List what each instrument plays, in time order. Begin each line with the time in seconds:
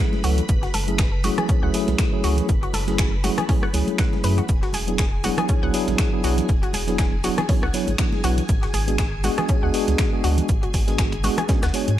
Already playing: string machine B4 B5
0.00 tine electric piano F#3 A3 C#4 E4 G#4
0.13 snare, high conga
0.24 sub bass C#2, tine electric piano F#3 A3 C#4 E4 A4, synth arpeggio sound F#4, open hi-hat, shaker
0.38 closed hi-hat, low conga
0.49 sub bass F#1, kick, closed hi-hat, shaker
0.63 synth arpeggio sound F#4, snare, closed hi-hat
0.74 sub bass F#1, synth arpeggio sound A4, open hi-hat, high conga, shaker
0.88 tine electric piano F#3 A3 C#4 E4 G#4, closed hi-hat
0.98 synth arpeggio sound G#4, finger snap, kick, snare, closed hi-hat, shaker
1.24 tine electric piano F#3 A3 C#4 E4 G#4, synth arpeggio sound F#4, open hi-hat, high conga, shaker
1.38 synth arpeggio sound G#4, cross-stick, closed hi-hat, low conga
1.49 synth arpeggio sound C#4, kick, closed hi-hat, shaker
1.63 sub bass C#2, tine electric piano F#3 A3 C#4 E4 G#4, synth arpeggio sound F#5
1.74 tine electric piano F#3 A3 C#4 E4 G#4, open hi-hat, shaker
1.88 sub bass B1, snare, closed hi-hat, high conga
1.98 finger snap, kick, snare, closed hi-hat, shaker
2.13 tine electric piano F#3 A3 C#4 E4 G#4
2.24 sub bass C#2, tine electric piano F#3 A3 C#4 E4 G#4, synth arpeggio sound F#4, open hi-hat, shaker
2.37 closed hi-hat, low conga
2.49 sub bass F#1, kick, closed hi-hat, shaker
2.63 synth arpeggio sound F#4, closed hi-hat
2.73 sub bass F#1, synth arpeggio sound A4, open hi-hat, high conga, shaker
2.87 tine electric piano F#3 A3 C#4 E4 G#4, snare, closed hi-hat
2.98 synth arpeggio sound G#4, finger snap, kick, snare, closed hi-hat, shaker
3.24 tine electric piano F#3 A3 C#4 E4 G#4, synth arpeggio sound F#4, open hi-hat, high conga, shaker
3.38 synth arpeggio sound G#4, cross-stick, closed hi-hat, low conga
3.48 tine electric piano F#3 A3 C#4 E4 G#4, synth arpeggio sound C#4, kick, closed hi-hat, open hi-hat
3.63 synth arpeggio sound F#5, cross-stick
3.73 sub bass C#2, tine electric piano F#3 A3 C#4 E4 G#4, open hi-hat, shaker
3.88 closed hi-hat, high conga
3.98 synth arpeggio sound F#5, finger snap, kick, snare, closed hi-hat, shaker
4.13 snare, high conga
4.24 sub bass F#2, tine electric piano F#3 A3 C#4 E4 G#4, synth arpeggio sound B4, open hi-hat, shaker
4.38 synth arpeggio sound F#4, closed hi-hat, low conga
4.49 sub bass E1, string machine G#4 G#5, kick, closed hi-hat, shaker
4.63 synth arpeggio sound F#4, snare, closed hi-hat
4.73 sub bass E1, synth arpeggio sound G#4, open hi-hat, high conga, shaker
4.87 tine electric piano F#3 B3 D4 E4 G#4, closed hi-hat
4.98 synth arpeggio sound G#4, finger snap, kick, snare, closed hi-hat, shaker
5.24 tine electric piano F#3 B3 D4 E4 G#4, synth arpeggio sound F#4, open hi-hat, high conga, shaker
5.37 synth arpeggio sound G#4, cross-stick, closed hi-hat, low conga
5.49 synth arpeggio sound C#4, kick, closed hi-hat, shaker
5.62 sub bass B1, tine electric piano F#3 B3 D4 E4 G#4, synth arpeggio sound F#5
5.73 tine electric piano F#3 B3 D4 E4 G#4, open hi-hat, shaker
5.88 sub bass G#1, snare, closed hi-hat, high conga
5.98 finger snap, kick, snare, closed hi-hat, shaker
6.12 tine electric piano F#3 B3 D4 E4 G#4
6.23 sub bass B1, tine electric piano F#3 B3 D4 E4 G#4, synth arpeggio sound F#4, open hi-hat, shaker
6.38 closed hi-hat, low conga
6.49 sub bass E1, kick, closed hi-hat, shaker
6.63 synth arpeggio sound F#4, closed hi-hat
6.73 sub bass E1, synth arpeggio sound G#4, open hi-hat, high conga, shaker
6.87 tine electric piano F#3 B3 D4 E4 G#4, snare, closed hi-hat
6.98 synth arpeggio sound G#4, finger snap, kick, snare, closed hi-hat, shaker
7.24 tine electric piano F#3 B3 D4 E4 G#4, synth arpeggio sound F#4, open hi-hat, shaker
7.38 synth arpeggio sound G#4, cross-stick, closed hi-hat, low conga
7.48 tine electric piano F#3 B3 D4 E4 G#4, synth arpeggio sound C#4, kick, closed hi-hat, open hi-hat
7.63 sub bass B1, synth arpeggio sound F#5, cross-stick
7.74 tine electric piano F#3 B3 D4 E4 C#5, open hi-hat, shaker
7.87 sub bass G#1, closed hi-hat, high conga
7.98 tine electric piano F#3 B3 D4 E4 G#4, finger snap, kick, snare, closed hi-hat, shaker
8.12 snare, high conga
8.24 sub bass B1, tine electric piano F#3 B3 D4 E4 B4, synth arpeggio sound F#4, open hi-hat, shaker
8.38 closed hi-hat, low conga
8.49 sub bass G#1, kick, closed hi-hat, shaker
8.63 synth arpeggio sound F#4, snare, closed hi-hat
8.73 sub bass G#1, synth arpeggio sound G#4, open hi-hat, high conga, shaker
8.88 tine electric piano G#3 B3 D4 F#4 G#4, closed hi-hat
8.98 synth arpeggio sound G#4, finger snap, kick, snare, closed hi-hat, shaker
9.24 tine electric piano G#3 B3 D4 F#4 G#4, synth arpeggio sound F#4, open hi-hat, high conga, shaker
9.38 synth arpeggio sound G#4, cross-stick, closed hi-hat, low conga
9.49 synth arpeggio sound C#4, kick, closed hi-hat, shaker
9.62 sub bass D2, tine electric piano G#3 B3 D4 F#4 G#4, synth arpeggio sound F#5
9.74 tine electric piano G#3 B3 D4 F#4 G#4, open hi-hat, shaker
9.88 sub bass C#2, snare, closed hi-hat, high conga
9.98 finger snap, kick, snare, closed hi-hat, shaker
10.12 tine electric piano G#3 B3 D4 F#4 G#4
10.23 sub bass D2, tine electric piano G#3 B3 D4 F#4 G#4, synth arpeggio sound F#4, open hi-hat, shaker
10.38 closed hi-hat, low conga
10.49 sub bass G#1, kick, closed hi-hat, shaker
10.63 synth arpeggio sound F#4, closed hi-hat
10.74 sub bass G#1, synth arpeggio sound G#4, kick, open hi-hat, high conga, shaker
10.87 tine electric piano G#3 B3 D4 F#4 G#4, snare, closed hi-hat
10.98 synth arpeggio sound G#4, finger snap, kick, snare, closed hi-hat, shaker
11.12 finger snap, closed hi-hat
11.23 tine electric piano G#3 B3 D4 F#4 G#4, synth arpeggio sound F#4, open hi-hat, high conga, shaker
11.38 synth arpeggio sound G#4, cross-stick, closed hi-hat, low conga
11.48 tine electric piano G#3 B3 D4 F#4 G#4, synth arpeggio sound C#4, kick, snare, closed hi-hat, shaker
11.63 sub bass D2, synth arpeggio sound F#5, cross-stick, snare, closed hi-hat, shaker
11.73 tine electric piano G#3 B3 D4 F#4 C#5, open hi-hat, shaker
11.88 sub bass G#2, closed hi-hat, high conga